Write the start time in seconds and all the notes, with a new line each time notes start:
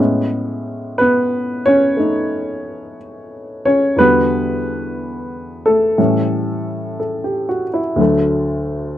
Already playing: A2 G#3
0.00 B3 C#4
0.98 B3 B4
1.66 C#4 C#5
1.97 A3 C#4 D#4
3.65 C#4 C#5
3.96 E2 D3 G3 B3 B4
4.02 F#4
5.66 A3 A4
5.98 A2 E3 G3 C#4
7.00 A4
7.24 G4
7.49 F#4
7.74 E4
7.96 D2 D3 F#3
8.01 A3